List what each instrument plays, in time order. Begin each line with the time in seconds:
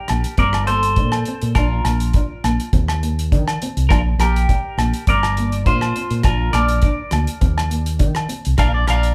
Already playing: clean electric guitar G4 A#4
0.08 fingered electric bass A#1, nylon-string guitar A#3, cross-stick, closed hi-hat, low agogo
0.24 closed hi-hat
0.38 fingered electric bass G1, nylon-string guitar C4, clean electric guitar A#4 D5, kick, closed hi-hat
0.53 cross-stick, low agogo
0.67 nylon-string guitar A#3, clean electric guitar A4 C5, closed hi-hat
0.83 closed hi-hat
0.96 fingered electric bass A#2, nylon-string guitar D4, kick, closed hi-hat
1.12 cross-stick, low agogo
1.25 nylon-string guitar C4, closed hi-hat
1.42 fingered electric bass A#2, closed hi-hat
1.55 fingered electric bass A#1, nylon-string guitar D4, clean electric guitar F4 A#4, kick, cross-stick, closed hi-hat, low agogo
1.85 fingered electric bass A#1, nylon-string guitar A#3, cross-stick, closed hi-hat, low agogo
2.00 closed hi-hat
2.13 nylon-string guitar D4, kick, closed hi-hat
2.44 fingered electric bass A#1, nylon-string guitar A#3, cross-stick, closed hi-hat, low agogo
2.60 closed hi-hat
2.73 fingered electric bass D#2, nylon-string guitar C4, kick, closed hi-hat
2.88 cross-stick, low agogo
3.03 nylon-string guitar A#3, closed hi-hat
3.19 closed hi-hat
3.32 fingered electric bass D#3, nylon-string guitar D4, kick, closed hi-hat
3.48 cross-stick, low agogo
3.62 nylon-string guitar C4, closed hi-hat
3.77 fingered electric bass C2, closed hi-hat
3.89 fingered electric bass A#1, nylon-string guitar D4, clean electric guitar F4 A#4, kick, cross-stick, closed hi-hat, low agogo
4.18 fingered electric bass A#1, nylon-string guitar A#3, clean electric guitar G4 A#4, cross-stick, closed hi-hat, low agogo
4.36 closed hi-hat
4.49 muted nylon-string guitar stroke, kick, closed hi-hat
4.78 fingered electric bass A#1, nylon-string guitar A#3, cross-stick, closed hi-hat, low agogo
4.93 closed hi-hat
5.07 fingered electric bass G1, nylon-string guitar C4, clean electric guitar A#4 D5, kick, closed hi-hat
5.23 cross-stick, low agogo
5.37 nylon-string guitar A#3, closed hi-hat
5.52 closed hi-hat
5.66 fingered electric bass A#2, nylon-string guitar D4, clean electric guitar F4 C5, kick, closed hi-hat
5.81 cross-stick, low agogo
5.96 nylon-string guitar C4, closed hi-hat
6.11 fingered electric bass A#2, closed hi-hat
6.23 fingered electric bass A#1, nylon-string guitar D4, clean electric guitar F4 A#4, kick, cross-stick, closed hi-hat, low agogo
6.53 fingered electric bass A#1, nylon-string guitar A#3, clean electric guitar A#4 D5, cross-stick, closed hi-hat, low agogo
6.68 closed hi-hat
6.82 nylon-string guitar D4, kick, closed hi-hat
7.11 fingered electric bass D2, nylon-string guitar A#3, cross-stick, closed hi-hat, low agogo
7.27 closed hi-hat
7.41 fingered electric bass D#2, nylon-string guitar C4, kick, closed hi-hat
7.58 cross-stick, low agogo
7.70 nylon-string guitar A#3, closed hi-hat
7.86 closed hi-hat
7.99 fingered electric bass D#3, nylon-string guitar D4, kick, closed hi-hat
8.15 cross-stick, low agogo
8.29 nylon-string guitar C4, closed hi-hat
8.45 fingered electric bass C2, closed hi-hat
8.58 fingered electric bass A#1, nylon-string guitar D4, clean electric guitar A#4 D5 F5, kick, cross-stick, closed hi-hat, low agogo
8.74 clean electric guitar D5
8.88 fingered electric bass A#1, clean electric guitar A#4 D5 F5, cross-stick, closed hi-hat, low agogo
9.03 closed hi-hat